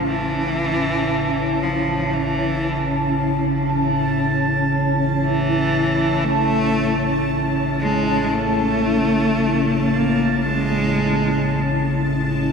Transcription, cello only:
0.06 E3
1.62 F3
2.13 E3
5.23 E3
6.24 A3
7.81 G#3
8.34 A3
9.93 A#3
10.44 G#3

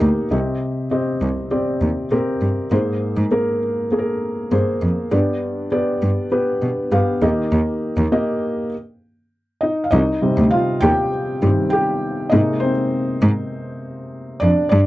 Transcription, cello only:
0.01 D2
0.31 C2
1.21 C2
1.81 D#2
2.11 A#2
2.41 G2
2.71 G#2
3.17 G#2
4.52 G2
4.82 F2
5.12 G2
6.02 G2
6.62 B2
6.92 G2
7.22 D#2
7.52 D#2
7.97 D#2
9.92 C2
10.37 D2
10.83 D#2
11.43 G2
12.32 G#2
13.22 G#2
14.42 F2
14.72 G2

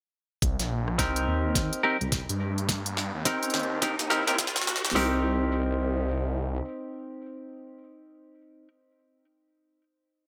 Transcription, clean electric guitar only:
0.98 C4 D#4 G4 A#4
1.83 C4 D#4 G4 A#4
3.25 C4 D#4 G4 A#4
3.82 C4 D#4 G4 A#4
4.10 C4 D#4 G4 A#4
4.27 C4 D#4 G4 A#4
4.95 C4 D#4 G4 A#4

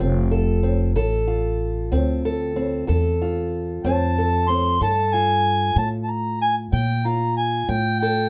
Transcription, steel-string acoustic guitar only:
Already playing: F4 A4
0.00 D2 C4
0.31 A4
0.63 C4
0.96 D2 A4
1.27 F4
1.92 D2 C4
2.25 A4
2.56 C4
2.87 D2 A4
3.22 F4
3.85 D2 C4
4.18 A4
4.49 C4
4.81 G2 A4
5.14 F4
5.77 G2
6.72 G2
7.05 F4
7.69 G2
8.02 A4

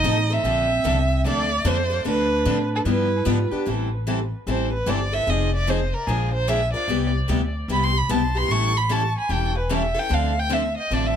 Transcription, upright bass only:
0.03 A1
0.43 A#1
0.85 C2
1.25 D2
1.64 F2
2.05 D2
2.46 A2
2.85 G2
3.26 G#2
3.52 muted upright bass stroke
3.67 A1
4.47 A1
4.86 G1
5.27 F1
6.07 A#1
6.88 C2
7.29 D2
7.68 C2
8.09 B1
8.49 A1
9.29 E1
10.10 D2
10.90 A1

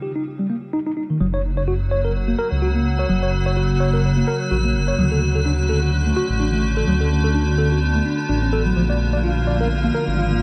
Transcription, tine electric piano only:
0.02 G4
0.16 D#4
0.39 G3
0.50 A#3
0.73 D#4
0.86 D#4
0.97 D#4
1.10 D#3
1.21 F#3
1.34 C#5
1.57 C#5
1.68 F#4
1.91 C#5
2.05 A#4
2.28 A#3
2.39 A#4
2.62 F#4
2.75 A#3
2.99 C#5
3.09 F#3
3.23 C#5
3.46 C#5
3.57 F#4
3.80 C#5
3.93 A#4
4.17 A#3
4.28 A#4
4.51 F#4
4.64 A#3
4.88 C#5
4.98 F#3
5.12 A4
5.35 A4
5.46 D4
5.69 A4
5.83 F#4
6.06 A3
6.17 F#4
6.40 D4
6.53 A3
6.77 A4
6.87 F#3
7.01 A4
7.24 A4
7.35 D4
7.58 A4
7.71 F#4
7.95 A3
8.05 D4
8.29 D4
8.42 C#4
8.53 A4
8.66 F#3
8.76 F3
8.90 D5
9.13 D5
9.24 F4
9.47 D5
9.60 A#4
9.84 A#3
9.94 A#4
10.18 F4
10.31 A#3

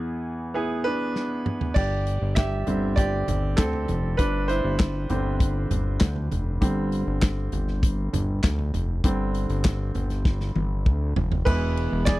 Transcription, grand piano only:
Already playing: E2 E3 B3 E4 G#4
0.54 B3 E4 G#4
0.84 D4 B4
1.74 G4 D5
2.35 G4 E5
2.66 D3 G3 C4
2.96 G4 D5
3.57 C4 A4
4.17 D4 B4
4.48 E4 C5
5.09 D3 G3 C4
6.61 D3 G3 C4
9.04 D3 G3 C4
11.45 E3 G#3 B3 E4 B4
12.05 G#4 D5

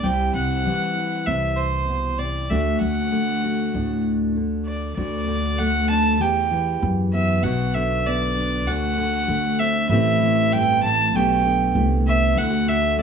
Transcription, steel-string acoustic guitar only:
0.04 C3 G3 C4 E4
0.65 E3 G3
0.96 E4
1.27 C3
1.89 B2
2.19 C3
2.50 D2 A3 D4 F#4
3.12 D3 A3
3.44 F#4
3.74 A2 D4
4.36 D3
4.97 D2 F#4
5.28 D3
5.60 A3
5.90 D4
6.20 E2 G4
6.51 E3
7.13 B3
7.44 B2 F#4
7.75 D3
8.07 B3
8.37 D4
8.67 D2 F#4
8.98 D3
9.29 A3
9.60 C4
9.91 A2 E3 A3 C4 E4
10.22 E3
10.52 G2
10.83 A2
11.14 B2 D3 A3 B3 G4
11.45 D3
11.77 A3
12.08 B3
12.36 D2 E4
12.50 F#4
12.66 D3
12.98 A3

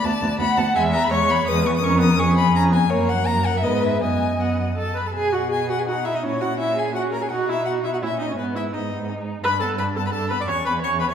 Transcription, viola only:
0.04 B3
0.22 B3
0.40 B3
0.57 B3
0.75 G#3
0.93 B3
1.11 G#3
1.29 B3
1.46 G#3
1.65 B3
1.82 C#4
1.99 B3
2.16 C#4
2.35 B3
2.53 C#4
2.71 B3
2.89 A#3
3.25 A#3
3.62 B3
4.00 B3
4.40 B3
4.77 A4
4.95 B4
5.06 A4
5.14 G#4
5.33 F#4
5.51 G#4
5.69 F#4
5.79 G#4
5.88 F#4
6.05 E4
6.14 D#4
6.23 C#4
6.41 F#4
6.59 E4
6.77 G#4
6.95 F#4
7.12 A#4
7.22 G#4
7.30 F#4
7.49 E4
7.66 F#4
7.85 E4
7.93 F#4
8.02 E4
8.20 D#4
8.29 C#4
8.37 B3
8.55 E4
8.73 D#4
9.44 B4
9.61 A4
9.78 B4
9.96 A4
10.06 B4
10.15 A4
10.31 B4
10.40 D5
10.48 C#5
10.66 B4
10.82 C#5
11.00 B4
11.08 C#5

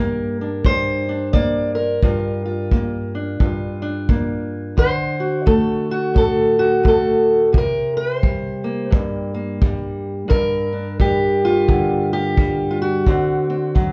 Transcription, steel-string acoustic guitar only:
Already playing: G2 A#3 A#4
0.41 D4
0.66 G2 C5
1.09 D4
1.33 A#3 D5
1.75 A#4
2.03 G2 F4
2.46 F4
2.73 A#3
3.15 D4
3.40 G2 F4
3.82 D4
4.10 A#3
4.77 D3 C5
5.20 F#4
5.46 A3 A4
5.91 F#4
6.14 A2 A4
6.59 F#4
6.83 A3
6.88 A4
7.53 C3
7.58 A#4
7.97 B4
8.17 C5
8.23 G3
8.64 A#3
8.87 G2 B4
9.00 A#4
9.34 A#3
9.62 G3
10.28 G2 A#4
10.73 D4
11.00 G3 G4
11.45 F4
11.68 D3
12.13 G4
12.39 G3
12.71 F4
12.82 F#4
13.08 D3 C4
13.50 C4
13.75 F#3

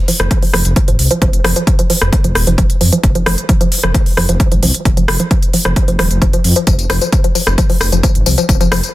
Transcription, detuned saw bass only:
0.20 F1
0.54 F1
0.65 F1
0.88 G#1
0.99 C2
1.22 F1
1.44 F1
2.02 F1
2.24 F1
2.35 D#1
2.47 F1
2.58 F1
2.81 F2
3.03 F1
3.26 F1
3.84 F1
4.17 F1
4.29 F1
4.52 G#1
4.63 C2
4.85 F1
5.08 F1
5.65 F1
5.88 F1
5.99 D#1
6.11 F1
6.22 F1
6.45 F2
6.67 F1
6.90 F1
7.47 F1
7.81 F1
7.92 F1
8.15 G#1
8.26 C2
8.49 F1
8.72 F1

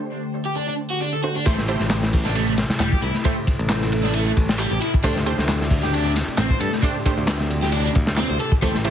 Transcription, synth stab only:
Already playing: A3 D4 G4 C5
1.23 A3 D4 G4 C5
1.46 A3 E4 G4 C5
1.68 A3 E4 G4 C5
3.25 A3 E4 G4 C5
5.04 A3 D4 G4 C5
5.26 A3 D4 G4 C5
6.83 A3 D4 G4 C5
7.06 A3 D4 G4 C5
8.62 A3 E4 G4 C5
8.85 A3 E4 G4 C5

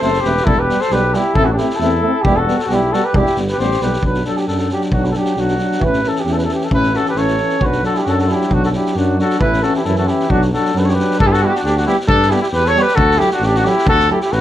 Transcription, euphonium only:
0.01 A3
0.25 A3
0.46 G3
0.69 G3
0.91 G3
1.14 G3
1.37 A3
1.58 A3
1.80 A3
2.02 A3
2.26 G3
2.47 G3
2.71 G3
2.93 G3
3.15 G3
3.39 G3
3.61 G3
3.82 G3
4.04 F#3
4.26 F#3
4.49 F#3
4.71 F#3
4.93 F#3
5.16 F#3
5.38 F#3
5.58 F#3
5.80 E3
6.04 E3
6.26 E3
6.47 E3
6.70 E3
6.93 E3
7.13 E3
7.38 E3
7.59 F#3
7.82 F#3
8.04 F#3
8.28 F#3
8.48 F#3
8.71 F#3
8.97 F#3
9.18 F#3
9.39 E3
9.62 E3
9.86 E3
10.09 E3
10.30 F#3
10.53 F#3
10.74 F#3
10.96 F#3
11.42 G3
11.86 G3
12.31 G3
12.76 G3
13.20 F#3
13.65 F#3
14.10 F#3

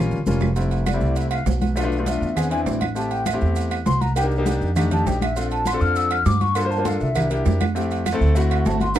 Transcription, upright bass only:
0.11 G1
0.27 F1
1.01 C2
1.46 B1
2.21 E2
2.66 A1
3.42 E2
3.87 C2
4.61 F2
5.06 A#1
5.81 F2
6.26 G2
7.01 C2
7.46 F2
8.21 D2
8.66 G1

